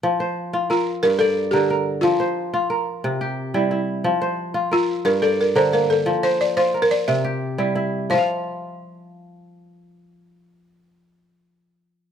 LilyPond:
<<
  \new Staff \with { instrumentName = "Balafon" } { \time 12/8 \key c \mixolydian \tempo 4. = 118 r2 f'4 bes'8 a'4 g'4. | f'2. r2. | r2 f'4 bes'8 a'8 bes'8 c''8 bes'8 a'8~ | a'8 c''8 d''8 c''8. bes'16 d''8 e''2~ e''8 r8 |
c''1.~ | c''1. | }
  \new Staff \with { instrumentName = "Kora" } { \time 12/8 \key c \mixolydian r8 c''4. bes'4. d''4 bes'8 bes'4~ | bes'8 c''4. bes'4. g'4 e'8 e'4~ | e'8 c''4. bes'4. d''4 bes'8 bes4~ | bes8 c''4. bes'4. g'4 e'8 e'4~ |
e'8 r1 r4. | r1. | }
  \new Staff \with { instrumentName = "Kora" } { \clef bass \time 12/8 \key c \mixolydian f4 r8 f'4 r8 g,4 r8 d4 r8 | f4 r8 f'4 r8 c4 r8 g4 r8 | f4 r8 f'4 r8 g,4 r8 d4 r8 | f4 r8 f'4 r8 c4 r8 g4 r8 |
<f f' f''>1.~ | <f f' f''>1. | }
>>